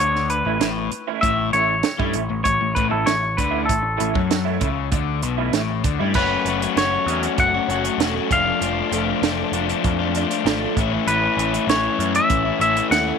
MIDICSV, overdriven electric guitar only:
0, 0, Header, 1, 3, 480
1, 0, Start_track
1, 0, Key_signature, 3, "major"
1, 0, Tempo, 615385
1, 953, Time_signature, 4, 2, 24, 8
1, 10284, End_track
2, 0, Start_track
2, 0, Title_t, "Overdriven electric guitar"
2, 0, Program_c, 0, 29
2, 0, Note_on_c, 0, 50, 94
2, 349, Note_off_c, 0, 50, 0
2, 359, Note_on_c, 0, 45, 65
2, 466, Note_off_c, 0, 45, 0
2, 475, Note_on_c, 0, 45, 95
2, 707, Note_off_c, 0, 45, 0
2, 954, Note_on_c, 0, 45, 99
2, 1187, Note_off_c, 0, 45, 0
2, 1196, Note_on_c, 0, 45, 70
2, 1388, Note_off_c, 0, 45, 0
2, 1547, Note_on_c, 0, 55, 98
2, 1664, Note_off_c, 0, 55, 0
2, 1682, Note_on_c, 0, 45, 76
2, 1783, Note_off_c, 0, 45, 0
2, 1793, Note_on_c, 0, 45, 67
2, 1902, Note_off_c, 0, 45, 0
2, 1911, Note_on_c, 0, 45, 64
2, 2026, Note_off_c, 0, 45, 0
2, 2036, Note_on_c, 0, 45, 63
2, 2148, Note_off_c, 0, 45, 0
2, 2158, Note_on_c, 0, 45, 98
2, 2270, Note_off_c, 0, 45, 0
2, 2288, Note_on_c, 0, 45, 70
2, 2391, Note_off_c, 0, 45, 0
2, 2400, Note_on_c, 0, 45, 73
2, 2591, Note_off_c, 0, 45, 0
2, 2645, Note_on_c, 0, 50, 105
2, 2874, Note_off_c, 0, 50, 0
2, 2881, Note_on_c, 0, 45, 72
2, 3072, Note_off_c, 0, 45, 0
2, 3125, Note_on_c, 0, 45, 74
2, 3230, Note_off_c, 0, 45, 0
2, 3233, Note_on_c, 0, 54, 90
2, 3588, Note_off_c, 0, 54, 0
2, 3591, Note_on_c, 0, 49, 99
2, 3828, Note_off_c, 0, 49, 0
2, 3838, Note_on_c, 0, 50, 98
2, 4072, Note_off_c, 0, 50, 0
2, 4084, Note_on_c, 0, 47, 96
2, 4315, Note_off_c, 0, 47, 0
2, 4324, Note_on_c, 0, 45, 100
2, 4555, Note_off_c, 0, 45, 0
2, 4565, Note_on_c, 0, 50, 103
2, 4675, Note_off_c, 0, 50, 0
2, 4685, Note_on_c, 0, 55, 90
2, 4794, Note_off_c, 0, 55, 0
2, 4797, Note_on_c, 0, 54, 84
2, 4801, Note_on_c, 0, 57, 82
2, 4814, Note_on_c, 0, 61, 101
2, 4821, Note_on_c, 0, 66, 89
2, 5032, Note_off_c, 0, 54, 0
2, 5041, Note_on_c, 0, 54, 73
2, 5044, Note_off_c, 0, 57, 0
2, 5047, Note_on_c, 0, 57, 80
2, 5050, Note_off_c, 0, 61, 0
2, 5054, Note_off_c, 0, 66, 0
2, 5059, Note_on_c, 0, 61, 81
2, 5063, Note_on_c, 0, 66, 85
2, 5154, Note_off_c, 0, 66, 0
2, 5163, Note_on_c, 0, 66, 63
2, 5166, Note_off_c, 0, 61, 0
2, 5175, Note_on_c, 0, 61, 55
2, 5187, Note_off_c, 0, 57, 0
2, 5190, Note_on_c, 0, 57, 51
2, 5273, Note_off_c, 0, 54, 0
2, 5283, Note_on_c, 0, 54, 86
2, 5288, Note_off_c, 0, 57, 0
2, 5289, Note_off_c, 0, 61, 0
2, 5291, Note_on_c, 0, 57, 87
2, 5298, Note_off_c, 0, 66, 0
2, 5298, Note_on_c, 0, 61, 92
2, 5307, Note_on_c, 0, 66, 84
2, 5516, Note_off_c, 0, 54, 0
2, 5525, Note_on_c, 0, 54, 81
2, 5532, Note_off_c, 0, 57, 0
2, 5533, Note_off_c, 0, 61, 0
2, 5535, Note_on_c, 0, 57, 85
2, 5539, Note_off_c, 0, 66, 0
2, 5542, Note_on_c, 0, 61, 73
2, 5549, Note_on_c, 0, 66, 87
2, 5874, Note_off_c, 0, 66, 0
2, 5881, Note_off_c, 0, 61, 0
2, 5884, Note_on_c, 0, 66, 66
2, 5890, Note_on_c, 0, 61, 58
2, 5901, Note_off_c, 0, 57, 0
2, 5904, Note_on_c, 0, 57, 54
2, 5982, Note_off_c, 0, 54, 0
2, 5992, Note_on_c, 0, 54, 74
2, 5998, Note_off_c, 0, 57, 0
2, 5998, Note_off_c, 0, 61, 0
2, 6001, Note_on_c, 0, 57, 75
2, 6006, Note_off_c, 0, 66, 0
2, 6007, Note_on_c, 0, 61, 87
2, 6015, Note_on_c, 0, 66, 87
2, 6103, Note_off_c, 0, 66, 0
2, 6113, Note_on_c, 0, 66, 79
2, 6121, Note_off_c, 0, 61, 0
2, 6130, Note_on_c, 0, 61, 63
2, 6140, Note_off_c, 0, 57, 0
2, 6143, Note_on_c, 0, 57, 57
2, 6233, Note_off_c, 0, 54, 0
2, 6242, Note_on_c, 0, 54, 88
2, 6245, Note_off_c, 0, 61, 0
2, 6246, Note_off_c, 0, 57, 0
2, 6249, Note_on_c, 0, 57, 93
2, 6254, Note_on_c, 0, 61, 99
2, 6257, Note_off_c, 0, 66, 0
2, 6266, Note_on_c, 0, 66, 99
2, 6355, Note_off_c, 0, 66, 0
2, 6365, Note_on_c, 0, 66, 79
2, 6367, Note_off_c, 0, 61, 0
2, 6376, Note_on_c, 0, 61, 57
2, 6383, Note_off_c, 0, 57, 0
2, 6386, Note_on_c, 0, 57, 60
2, 6467, Note_off_c, 0, 54, 0
2, 6468, Note_off_c, 0, 66, 0
2, 6474, Note_off_c, 0, 61, 0
2, 6482, Note_on_c, 0, 53, 90
2, 6484, Note_off_c, 0, 57, 0
2, 6487, Note_on_c, 0, 57, 105
2, 6496, Note_on_c, 0, 62, 92
2, 6502, Note_on_c, 0, 65, 105
2, 6596, Note_off_c, 0, 65, 0
2, 6606, Note_on_c, 0, 65, 62
2, 6610, Note_off_c, 0, 62, 0
2, 6620, Note_on_c, 0, 62, 60
2, 6626, Note_off_c, 0, 57, 0
2, 6629, Note_on_c, 0, 57, 53
2, 6703, Note_off_c, 0, 53, 0
2, 6712, Note_on_c, 0, 53, 88
2, 6723, Note_off_c, 0, 57, 0
2, 6723, Note_off_c, 0, 62, 0
2, 6726, Note_on_c, 0, 57, 80
2, 6727, Note_off_c, 0, 65, 0
2, 6732, Note_on_c, 0, 62, 94
2, 6737, Note_on_c, 0, 65, 102
2, 6943, Note_off_c, 0, 53, 0
2, 6953, Note_on_c, 0, 53, 77
2, 6960, Note_off_c, 0, 57, 0
2, 6963, Note_on_c, 0, 57, 76
2, 6964, Note_off_c, 0, 62, 0
2, 6969, Note_off_c, 0, 65, 0
2, 6974, Note_on_c, 0, 62, 81
2, 6978, Note_on_c, 0, 65, 85
2, 7060, Note_off_c, 0, 65, 0
2, 7069, Note_on_c, 0, 65, 64
2, 7071, Note_off_c, 0, 62, 0
2, 7080, Note_on_c, 0, 62, 55
2, 7090, Note_off_c, 0, 57, 0
2, 7093, Note_on_c, 0, 57, 56
2, 7185, Note_off_c, 0, 53, 0
2, 7194, Note_on_c, 0, 53, 92
2, 7200, Note_off_c, 0, 57, 0
2, 7201, Note_off_c, 0, 62, 0
2, 7203, Note_on_c, 0, 57, 82
2, 7204, Note_off_c, 0, 65, 0
2, 7210, Note_on_c, 0, 62, 88
2, 7214, Note_on_c, 0, 65, 89
2, 7422, Note_off_c, 0, 53, 0
2, 7430, Note_off_c, 0, 57, 0
2, 7432, Note_on_c, 0, 53, 75
2, 7436, Note_off_c, 0, 62, 0
2, 7439, Note_on_c, 0, 57, 80
2, 7443, Note_off_c, 0, 65, 0
2, 7445, Note_on_c, 0, 62, 83
2, 7452, Note_on_c, 0, 65, 88
2, 7783, Note_off_c, 0, 65, 0
2, 7792, Note_on_c, 0, 65, 65
2, 7793, Note_off_c, 0, 62, 0
2, 7802, Note_on_c, 0, 62, 62
2, 7803, Note_off_c, 0, 57, 0
2, 7812, Note_on_c, 0, 57, 50
2, 7905, Note_off_c, 0, 53, 0
2, 7914, Note_on_c, 0, 53, 78
2, 7916, Note_off_c, 0, 57, 0
2, 7923, Note_off_c, 0, 62, 0
2, 7925, Note_on_c, 0, 57, 73
2, 7930, Note_off_c, 0, 65, 0
2, 7932, Note_on_c, 0, 62, 78
2, 7939, Note_on_c, 0, 65, 78
2, 8023, Note_off_c, 0, 65, 0
2, 8032, Note_on_c, 0, 65, 68
2, 8040, Note_off_c, 0, 62, 0
2, 8047, Note_off_c, 0, 57, 0
2, 8050, Note_on_c, 0, 62, 67
2, 8056, Note_on_c, 0, 57, 52
2, 8148, Note_off_c, 0, 53, 0
2, 8157, Note_off_c, 0, 57, 0
2, 8158, Note_on_c, 0, 53, 89
2, 8166, Note_on_c, 0, 57, 95
2, 8167, Note_off_c, 0, 62, 0
2, 8173, Note_off_c, 0, 65, 0
2, 8177, Note_on_c, 0, 62, 101
2, 8183, Note_on_c, 0, 65, 92
2, 8267, Note_off_c, 0, 65, 0
2, 8277, Note_on_c, 0, 65, 69
2, 8286, Note_off_c, 0, 62, 0
2, 8290, Note_off_c, 0, 57, 0
2, 8295, Note_on_c, 0, 62, 58
2, 8299, Note_on_c, 0, 57, 58
2, 8383, Note_off_c, 0, 65, 0
2, 8384, Note_off_c, 0, 53, 0
2, 8392, Note_off_c, 0, 62, 0
2, 8394, Note_off_c, 0, 57, 0
2, 8405, Note_on_c, 0, 45, 88
2, 8412, Note_on_c, 0, 52, 93
2, 8415, Note_on_c, 0, 57, 92
2, 8424, Note_on_c, 0, 61, 107
2, 8425, Note_on_c, 0, 64, 99
2, 8507, Note_off_c, 0, 64, 0
2, 8516, Note_on_c, 0, 64, 72
2, 8520, Note_off_c, 0, 61, 0
2, 8529, Note_off_c, 0, 57, 0
2, 8529, Note_on_c, 0, 61, 67
2, 8538, Note_on_c, 0, 57, 54
2, 8626, Note_off_c, 0, 45, 0
2, 8630, Note_off_c, 0, 52, 0
2, 8635, Note_on_c, 0, 45, 90
2, 8638, Note_off_c, 0, 57, 0
2, 8639, Note_on_c, 0, 52, 90
2, 8644, Note_off_c, 0, 61, 0
2, 8647, Note_off_c, 0, 64, 0
2, 8647, Note_on_c, 0, 57, 94
2, 8653, Note_on_c, 0, 61, 98
2, 8656, Note_on_c, 0, 64, 100
2, 8861, Note_off_c, 0, 52, 0
2, 8870, Note_off_c, 0, 57, 0
2, 8870, Note_on_c, 0, 52, 79
2, 8879, Note_off_c, 0, 61, 0
2, 8879, Note_on_c, 0, 57, 79
2, 8888, Note_off_c, 0, 64, 0
2, 8889, Note_on_c, 0, 61, 91
2, 8898, Note_on_c, 0, 64, 93
2, 8991, Note_off_c, 0, 64, 0
2, 9001, Note_on_c, 0, 64, 58
2, 9005, Note_off_c, 0, 61, 0
2, 9014, Note_on_c, 0, 61, 63
2, 9016, Note_off_c, 0, 57, 0
2, 9025, Note_on_c, 0, 57, 49
2, 9098, Note_off_c, 0, 45, 0
2, 9107, Note_on_c, 0, 45, 87
2, 9109, Note_off_c, 0, 52, 0
2, 9115, Note_off_c, 0, 57, 0
2, 9116, Note_off_c, 0, 61, 0
2, 9118, Note_on_c, 0, 52, 99
2, 9124, Note_on_c, 0, 57, 99
2, 9126, Note_off_c, 0, 64, 0
2, 9126, Note_on_c, 0, 61, 101
2, 9135, Note_on_c, 0, 64, 98
2, 9351, Note_off_c, 0, 52, 0
2, 9360, Note_on_c, 0, 52, 83
2, 9361, Note_off_c, 0, 57, 0
2, 9370, Note_off_c, 0, 61, 0
2, 9370, Note_on_c, 0, 57, 85
2, 9371, Note_off_c, 0, 64, 0
2, 9379, Note_on_c, 0, 61, 83
2, 9381, Note_on_c, 0, 64, 89
2, 9591, Note_off_c, 0, 45, 0
2, 9699, Note_off_c, 0, 64, 0
2, 9709, Note_off_c, 0, 61, 0
2, 9709, Note_on_c, 0, 64, 70
2, 9719, Note_on_c, 0, 61, 61
2, 9722, Note_off_c, 0, 57, 0
2, 9731, Note_on_c, 0, 57, 52
2, 9820, Note_off_c, 0, 52, 0
2, 9828, Note_off_c, 0, 57, 0
2, 9830, Note_on_c, 0, 52, 81
2, 9833, Note_off_c, 0, 61, 0
2, 9837, Note_on_c, 0, 57, 77
2, 9843, Note_on_c, 0, 61, 80
2, 9845, Note_off_c, 0, 64, 0
2, 9854, Note_on_c, 0, 64, 86
2, 9949, Note_off_c, 0, 64, 0
2, 9958, Note_off_c, 0, 61, 0
2, 9958, Note_on_c, 0, 64, 70
2, 9968, Note_on_c, 0, 61, 66
2, 9974, Note_off_c, 0, 57, 0
2, 9984, Note_on_c, 0, 57, 63
2, 10074, Note_off_c, 0, 52, 0
2, 10076, Note_on_c, 0, 45, 97
2, 10080, Note_off_c, 0, 57, 0
2, 10083, Note_on_c, 0, 52, 97
2, 10086, Note_off_c, 0, 61, 0
2, 10088, Note_off_c, 0, 64, 0
2, 10089, Note_on_c, 0, 57, 100
2, 10095, Note_on_c, 0, 61, 106
2, 10097, Note_on_c, 0, 64, 104
2, 10184, Note_off_c, 0, 64, 0
2, 10192, Note_off_c, 0, 61, 0
2, 10194, Note_on_c, 0, 64, 71
2, 10202, Note_on_c, 0, 61, 71
2, 10203, Note_off_c, 0, 57, 0
2, 10212, Note_on_c, 0, 57, 65
2, 10284, Note_off_c, 0, 45, 0
2, 10284, Note_off_c, 0, 52, 0
2, 10284, Note_off_c, 0, 57, 0
2, 10284, Note_off_c, 0, 61, 0
2, 10284, Note_off_c, 0, 64, 0
2, 10284, End_track
3, 0, Start_track
3, 0, Title_t, "Muted overdriven electric guitar strokes"
3, 723, Note_on_c, 9, 29, 58
3, 801, Note_off_c, 9, 29, 0
3, 10284, End_track
0, 0, End_of_file